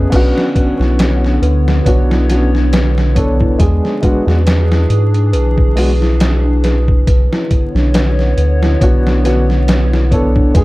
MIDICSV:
0, 0, Header, 1, 6, 480
1, 0, Start_track
1, 0, Tempo, 869565
1, 63, Time_signature, 4, 2, 24, 8
1, 5875, End_track
2, 0, Start_track
2, 0, Title_t, "Celesta"
2, 0, Program_c, 0, 8
2, 0, Control_c, 0, 64, 127
2, 0, Note_on_c, 0, 64, 81
2, 0, Note_on_c, 0, 71, 104
2, 60, Note_off_c, 0, 71, 0
2, 66, Note_on_c, 0, 71, 95
2, 70, Control_c, 0, 64, 0
2, 75, Note_off_c, 0, 64, 0
2, 177, Control_c, 0, 64, 127
2, 294, Note_off_c, 0, 71, 0
2, 306, Note_on_c, 0, 71, 75
2, 425, Note_off_c, 0, 71, 0
2, 443, Note_on_c, 0, 64, 69
2, 667, Note_off_c, 0, 64, 0
2, 678, Note_on_c, 0, 62, 63
2, 773, Note_off_c, 0, 62, 0
2, 785, Note_on_c, 0, 71, 95
2, 1014, Note_off_c, 0, 71, 0
2, 1026, Note_on_c, 0, 71, 77
2, 1145, Note_off_c, 0, 71, 0
2, 1158, Note_on_c, 0, 64, 75
2, 1384, Note_off_c, 0, 64, 0
2, 1399, Note_on_c, 0, 62, 78
2, 1493, Note_off_c, 0, 62, 0
2, 1506, Note_on_c, 0, 71, 93
2, 1734, Note_off_c, 0, 71, 0
2, 1742, Note_on_c, 0, 71, 69
2, 1863, Note_off_c, 0, 71, 0
2, 1876, Note_on_c, 0, 64, 80
2, 1983, Note_off_c, 0, 64, 0
2, 1991, Control_c, 0, 64, 0
2, 2083, Control_c, 0, 64, 127
2, 2117, Note_on_c, 0, 62, 71
2, 2213, Note_off_c, 0, 62, 0
2, 2223, Note_on_c, 0, 71, 95
2, 2452, Note_off_c, 0, 71, 0
2, 2462, Note_on_c, 0, 71, 78
2, 2583, Note_off_c, 0, 71, 0
2, 2596, Note_on_c, 0, 64, 65
2, 2823, Note_off_c, 0, 64, 0
2, 2836, Note_on_c, 0, 62, 71
2, 2932, Note_off_c, 0, 62, 0
2, 2941, Note_on_c, 0, 71, 101
2, 3172, Note_off_c, 0, 71, 0
2, 3183, Note_on_c, 0, 71, 72
2, 3304, Note_off_c, 0, 71, 0
2, 3316, Note_on_c, 0, 64, 78
2, 3543, Note_off_c, 0, 64, 0
2, 3557, Note_on_c, 0, 62, 75
2, 3653, Note_off_c, 0, 62, 0
2, 3664, Note_on_c, 0, 71, 95
2, 3893, Note_off_c, 0, 71, 0
2, 3904, Note_on_c, 0, 71, 82
2, 3910, Control_c, 0, 64, 0
2, 4013, Control_c, 0, 64, 127
2, 4024, Note_off_c, 0, 71, 0
2, 4041, Note_on_c, 0, 64, 73
2, 4266, Note_off_c, 0, 64, 0
2, 4277, Note_on_c, 0, 62, 70
2, 4373, Note_off_c, 0, 62, 0
2, 4385, Note_on_c, 0, 71, 92
2, 4614, Note_off_c, 0, 71, 0
2, 4626, Note_on_c, 0, 71, 77
2, 4745, Note_off_c, 0, 71, 0
2, 4760, Note_on_c, 0, 64, 79
2, 4986, Note_off_c, 0, 64, 0
2, 4998, Note_on_c, 0, 62, 80
2, 5093, Note_off_c, 0, 62, 0
2, 5104, Note_on_c, 0, 71, 98
2, 5333, Note_off_c, 0, 71, 0
2, 5344, Note_on_c, 0, 71, 78
2, 5464, Note_off_c, 0, 71, 0
2, 5476, Note_on_c, 0, 64, 70
2, 5703, Note_off_c, 0, 64, 0
2, 5716, Note_on_c, 0, 62, 74
2, 5812, Note_off_c, 0, 62, 0
2, 5822, Note_on_c, 0, 71, 98
2, 5830, Control_c, 0, 64, 0
2, 5875, Note_off_c, 0, 71, 0
2, 5875, End_track
3, 0, Start_track
3, 0, Title_t, "Upright piano"
3, 0, Program_c, 1, 0
3, 0, Note_on_c, 1, 64, 78
3, 0, Note_on_c, 1, 68, 99
3, 55, Note_on_c, 1, 59, 93
3, 56, Note_off_c, 1, 64, 0
3, 59, Note_off_c, 1, 68, 0
3, 66, Note_on_c, 1, 61, 93
3, 75, Note_on_c, 1, 62, 88
3, 86, Note_on_c, 1, 66, 112
3, 779, Note_off_c, 1, 59, 0
3, 785, Note_off_c, 1, 61, 0
3, 789, Note_off_c, 1, 62, 0
3, 795, Note_off_c, 1, 66, 0
3, 1019, Note_on_c, 1, 59, 77
3, 1025, Note_on_c, 1, 73, 70
3, 1029, Note_on_c, 1, 62, 74
3, 1034, Note_on_c, 1, 66, 87
3, 1236, Note_off_c, 1, 59, 0
3, 1239, Note_off_c, 1, 73, 0
3, 1241, Note_off_c, 1, 62, 0
3, 1243, Note_off_c, 1, 66, 0
3, 1262, Note_on_c, 1, 59, 76
3, 1266, Note_on_c, 1, 61, 71
3, 1271, Note_on_c, 1, 62, 73
3, 1277, Note_on_c, 1, 66, 84
3, 1367, Note_off_c, 1, 59, 0
3, 1369, Note_off_c, 1, 61, 0
3, 1371, Note_off_c, 1, 62, 0
3, 1374, Note_off_c, 1, 66, 0
3, 1736, Note_on_c, 1, 59, 78
3, 1741, Note_on_c, 1, 73, 73
3, 1747, Note_on_c, 1, 62, 74
3, 1751, Note_on_c, 1, 69, 83
3, 1954, Note_off_c, 1, 59, 0
3, 1957, Note_off_c, 1, 73, 0
3, 1960, Note_off_c, 1, 62, 0
3, 1962, Note_off_c, 1, 69, 0
3, 1978, Note_on_c, 1, 56, 73
3, 1984, Note_on_c, 1, 59, 67
3, 1989, Note_on_c, 1, 62, 67
3, 1993, Note_on_c, 1, 68, 80
3, 2196, Note_off_c, 1, 56, 0
3, 2198, Note_off_c, 1, 59, 0
3, 2201, Note_off_c, 1, 62, 0
3, 2203, Note_off_c, 1, 68, 0
3, 2216, Note_on_c, 1, 56, 81
3, 2220, Note_on_c, 1, 59, 73
3, 2227, Note_on_c, 1, 62, 73
3, 2231, Note_on_c, 1, 66, 92
3, 2322, Note_off_c, 1, 56, 0
3, 2324, Note_off_c, 1, 59, 0
3, 2327, Note_off_c, 1, 62, 0
3, 2329, Note_off_c, 1, 66, 0
3, 2348, Note_on_c, 1, 56, 77
3, 2353, Note_on_c, 1, 59, 72
3, 2358, Note_on_c, 1, 62, 75
3, 2361, Note_on_c, 1, 66, 88
3, 2404, Note_off_c, 1, 56, 0
3, 2407, Note_off_c, 1, 59, 0
3, 2409, Note_off_c, 1, 62, 0
3, 2411, Note_off_c, 1, 66, 0
3, 3177, Note_on_c, 1, 56, 75
3, 3183, Note_on_c, 1, 59, 73
3, 3186, Note_on_c, 1, 62, 67
3, 3191, Note_on_c, 1, 66, 87
3, 3245, Note_off_c, 1, 56, 0
3, 3248, Note_off_c, 1, 59, 0
3, 3250, Note_off_c, 1, 62, 0
3, 3252, Note_off_c, 1, 66, 0
3, 4862, Note_on_c, 1, 59, 81
3, 4866, Note_on_c, 1, 73, 77
3, 4870, Note_on_c, 1, 62, 69
3, 4876, Note_on_c, 1, 66, 85
3, 5077, Note_off_c, 1, 59, 0
3, 5079, Note_off_c, 1, 73, 0
3, 5081, Note_off_c, 1, 62, 0
3, 5084, Note_off_c, 1, 66, 0
3, 5097, Note_on_c, 1, 59, 73
3, 5104, Note_on_c, 1, 61, 69
3, 5109, Note_on_c, 1, 62, 75
3, 5112, Note_on_c, 1, 66, 89
3, 5204, Note_off_c, 1, 59, 0
3, 5208, Note_off_c, 1, 61, 0
3, 5210, Note_off_c, 1, 62, 0
3, 5212, Note_off_c, 1, 66, 0
3, 5577, Note_on_c, 1, 59, 81
3, 5583, Note_on_c, 1, 73, 74
3, 5588, Note_on_c, 1, 62, 70
3, 5594, Note_on_c, 1, 69, 91
3, 5795, Note_off_c, 1, 59, 0
3, 5798, Note_off_c, 1, 73, 0
3, 5800, Note_off_c, 1, 62, 0
3, 5803, Note_off_c, 1, 69, 0
3, 5819, Note_on_c, 1, 56, 72
3, 5824, Note_on_c, 1, 59, 71
3, 5829, Note_on_c, 1, 62, 66
3, 5834, Note_on_c, 1, 68, 86
3, 5875, Note_off_c, 1, 56, 0
3, 5875, Note_off_c, 1, 59, 0
3, 5875, Note_off_c, 1, 62, 0
3, 5875, Note_off_c, 1, 68, 0
3, 5875, End_track
4, 0, Start_track
4, 0, Title_t, "Ambient pad"
4, 0, Program_c, 2, 92
4, 62, Note_on_c, 2, 73, 91
4, 64, Note_on_c, 2, 50, 81
4, 64, Note_on_c, 2, 59, 75
4, 1963, Note_off_c, 2, 73, 0
4, 1965, Note_off_c, 2, 50, 0
4, 1965, Note_off_c, 2, 59, 0
4, 1981, Note_on_c, 2, 62, 81
4, 1981, Note_on_c, 2, 68, 92
4, 1983, Note_on_c, 2, 52, 85
4, 3883, Note_off_c, 2, 62, 0
4, 3883, Note_off_c, 2, 68, 0
4, 3884, Note_off_c, 2, 52, 0
4, 3900, Note_on_c, 2, 59, 77
4, 3901, Note_on_c, 2, 50, 83
4, 3901, Note_on_c, 2, 73, 93
4, 5803, Note_off_c, 2, 50, 0
4, 5803, Note_off_c, 2, 59, 0
4, 5803, Note_off_c, 2, 73, 0
4, 5820, Note_on_c, 2, 52, 80
4, 5820, Note_on_c, 2, 62, 80
4, 5822, Note_on_c, 2, 68, 93
4, 5875, Note_off_c, 2, 52, 0
4, 5875, Note_off_c, 2, 62, 0
4, 5875, Note_off_c, 2, 68, 0
4, 5875, End_track
5, 0, Start_track
5, 0, Title_t, "Analog synth bass"
5, 0, Program_c, 3, 38
5, 67, Note_on_c, 3, 35, 93
5, 183, Note_off_c, 3, 35, 0
5, 440, Note_on_c, 3, 35, 88
5, 764, Note_off_c, 3, 35, 0
5, 784, Note_on_c, 3, 38, 94
5, 998, Note_off_c, 3, 38, 0
5, 1025, Note_on_c, 3, 35, 100
5, 1964, Note_off_c, 3, 35, 0
5, 1984, Note_on_c, 3, 40, 93
5, 2102, Note_off_c, 3, 40, 0
5, 2356, Note_on_c, 3, 40, 92
5, 2683, Note_off_c, 3, 40, 0
5, 2703, Note_on_c, 3, 44, 91
5, 2941, Note_on_c, 3, 35, 82
5, 2950, Note_off_c, 3, 44, 0
5, 3882, Note_off_c, 3, 35, 0
5, 3904, Note_on_c, 3, 35, 94
5, 4022, Note_off_c, 3, 35, 0
5, 4276, Note_on_c, 3, 35, 96
5, 4603, Note_off_c, 3, 35, 0
5, 4622, Note_on_c, 3, 38, 96
5, 4837, Note_off_c, 3, 38, 0
5, 4864, Note_on_c, 3, 35, 99
5, 5803, Note_off_c, 3, 35, 0
5, 5822, Note_on_c, 3, 40, 94
5, 5875, Note_off_c, 3, 40, 0
5, 5875, End_track
6, 0, Start_track
6, 0, Title_t, "Drums"
6, 66, Note_on_c, 9, 36, 97
6, 67, Note_on_c, 9, 42, 86
6, 67, Note_on_c, 9, 49, 92
6, 122, Note_off_c, 9, 36, 0
6, 122, Note_off_c, 9, 42, 0
6, 122, Note_off_c, 9, 49, 0
6, 207, Note_on_c, 9, 38, 48
6, 263, Note_off_c, 9, 38, 0
6, 306, Note_on_c, 9, 36, 91
6, 308, Note_on_c, 9, 42, 63
6, 361, Note_off_c, 9, 36, 0
6, 363, Note_off_c, 9, 42, 0
6, 447, Note_on_c, 9, 38, 36
6, 502, Note_off_c, 9, 38, 0
6, 547, Note_on_c, 9, 42, 90
6, 552, Note_on_c, 9, 38, 114
6, 602, Note_off_c, 9, 42, 0
6, 607, Note_off_c, 9, 38, 0
6, 687, Note_on_c, 9, 38, 39
6, 743, Note_off_c, 9, 38, 0
6, 788, Note_on_c, 9, 42, 67
6, 843, Note_off_c, 9, 42, 0
6, 927, Note_on_c, 9, 38, 56
6, 982, Note_off_c, 9, 38, 0
6, 1026, Note_on_c, 9, 36, 102
6, 1028, Note_on_c, 9, 42, 84
6, 1081, Note_off_c, 9, 36, 0
6, 1083, Note_off_c, 9, 42, 0
6, 1166, Note_on_c, 9, 38, 47
6, 1221, Note_off_c, 9, 38, 0
6, 1267, Note_on_c, 9, 42, 67
6, 1272, Note_on_c, 9, 38, 38
6, 1322, Note_off_c, 9, 42, 0
6, 1327, Note_off_c, 9, 38, 0
6, 1407, Note_on_c, 9, 38, 37
6, 1462, Note_off_c, 9, 38, 0
6, 1506, Note_on_c, 9, 42, 81
6, 1510, Note_on_c, 9, 38, 117
6, 1561, Note_off_c, 9, 42, 0
6, 1565, Note_off_c, 9, 38, 0
6, 1644, Note_on_c, 9, 38, 45
6, 1699, Note_off_c, 9, 38, 0
6, 1745, Note_on_c, 9, 36, 93
6, 1745, Note_on_c, 9, 42, 69
6, 1800, Note_off_c, 9, 36, 0
6, 1800, Note_off_c, 9, 42, 0
6, 1879, Note_on_c, 9, 36, 93
6, 1934, Note_off_c, 9, 36, 0
6, 1984, Note_on_c, 9, 36, 101
6, 1985, Note_on_c, 9, 42, 86
6, 2040, Note_off_c, 9, 36, 0
6, 2040, Note_off_c, 9, 42, 0
6, 2125, Note_on_c, 9, 38, 34
6, 2180, Note_off_c, 9, 38, 0
6, 2223, Note_on_c, 9, 42, 68
6, 2224, Note_on_c, 9, 36, 92
6, 2278, Note_off_c, 9, 42, 0
6, 2279, Note_off_c, 9, 36, 0
6, 2364, Note_on_c, 9, 38, 42
6, 2419, Note_off_c, 9, 38, 0
6, 2466, Note_on_c, 9, 42, 89
6, 2470, Note_on_c, 9, 38, 123
6, 2521, Note_off_c, 9, 42, 0
6, 2525, Note_off_c, 9, 38, 0
6, 2604, Note_on_c, 9, 38, 56
6, 2659, Note_off_c, 9, 38, 0
6, 2705, Note_on_c, 9, 42, 73
6, 2760, Note_off_c, 9, 42, 0
6, 2839, Note_on_c, 9, 42, 42
6, 2895, Note_off_c, 9, 42, 0
6, 2944, Note_on_c, 9, 42, 84
6, 2999, Note_off_c, 9, 42, 0
6, 3078, Note_on_c, 9, 36, 90
6, 3133, Note_off_c, 9, 36, 0
6, 3184, Note_on_c, 9, 46, 81
6, 3239, Note_off_c, 9, 46, 0
6, 3324, Note_on_c, 9, 38, 40
6, 3379, Note_off_c, 9, 38, 0
6, 3424, Note_on_c, 9, 42, 86
6, 3428, Note_on_c, 9, 38, 114
6, 3479, Note_off_c, 9, 42, 0
6, 3484, Note_off_c, 9, 38, 0
6, 3664, Note_on_c, 9, 42, 65
6, 3669, Note_on_c, 9, 38, 53
6, 3719, Note_off_c, 9, 42, 0
6, 3724, Note_off_c, 9, 38, 0
6, 3798, Note_on_c, 9, 36, 96
6, 3853, Note_off_c, 9, 36, 0
6, 3904, Note_on_c, 9, 36, 110
6, 3905, Note_on_c, 9, 42, 83
6, 3959, Note_off_c, 9, 36, 0
6, 3960, Note_off_c, 9, 42, 0
6, 4044, Note_on_c, 9, 38, 50
6, 4099, Note_off_c, 9, 38, 0
6, 4144, Note_on_c, 9, 36, 90
6, 4144, Note_on_c, 9, 42, 62
6, 4199, Note_off_c, 9, 36, 0
6, 4199, Note_off_c, 9, 42, 0
6, 4283, Note_on_c, 9, 38, 41
6, 4338, Note_off_c, 9, 38, 0
6, 4384, Note_on_c, 9, 42, 89
6, 4388, Note_on_c, 9, 38, 118
6, 4439, Note_off_c, 9, 42, 0
6, 4444, Note_off_c, 9, 38, 0
6, 4521, Note_on_c, 9, 38, 40
6, 4576, Note_off_c, 9, 38, 0
6, 4624, Note_on_c, 9, 42, 70
6, 4679, Note_off_c, 9, 42, 0
6, 4762, Note_on_c, 9, 38, 57
6, 4817, Note_off_c, 9, 38, 0
6, 4864, Note_on_c, 9, 36, 109
6, 4866, Note_on_c, 9, 42, 83
6, 4919, Note_off_c, 9, 36, 0
6, 4921, Note_off_c, 9, 42, 0
6, 5005, Note_on_c, 9, 38, 49
6, 5060, Note_off_c, 9, 38, 0
6, 5106, Note_on_c, 9, 42, 67
6, 5111, Note_on_c, 9, 38, 35
6, 5161, Note_off_c, 9, 42, 0
6, 5166, Note_off_c, 9, 38, 0
6, 5244, Note_on_c, 9, 38, 35
6, 5299, Note_off_c, 9, 38, 0
6, 5344, Note_on_c, 9, 42, 83
6, 5348, Note_on_c, 9, 38, 110
6, 5399, Note_off_c, 9, 42, 0
6, 5403, Note_off_c, 9, 38, 0
6, 5484, Note_on_c, 9, 38, 46
6, 5539, Note_off_c, 9, 38, 0
6, 5583, Note_on_c, 9, 36, 94
6, 5586, Note_on_c, 9, 42, 66
6, 5639, Note_off_c, 9, 36, 0
6, 5641, Note_off_c, 9, 42, 0
6, 5717, Note_on_c, 9, 36, 91
6, 5772, Note_off_c, 9, 36, 0
6, 5822, Note_on_c, 9, 42, 83
6, 5823, Note_on_c, 9, 36, 112
6, 5875, Note_off_c, 9, 36, 0
6, 5875, Note_off_c, 9, 42, 0
6, 5875, End_track
0, 0, End_of_file